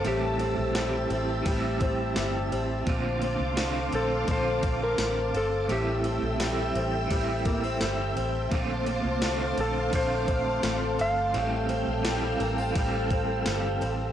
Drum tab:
RD |xxxxxxxx|xxxxxxxx|xxxxxxxx|xxxxxxxx|
TB |--x---x-|--x---x-|--x---x-|--x---x-|
SD |--o---o-|--o---o-|--o---o-|--o---o-|
BD |----oo--|o---oo--|----oo--|o---oo--|

RD |xxxxxxxx|
TB |--x---x-|
SD |--o---o-|
BD |----oo--|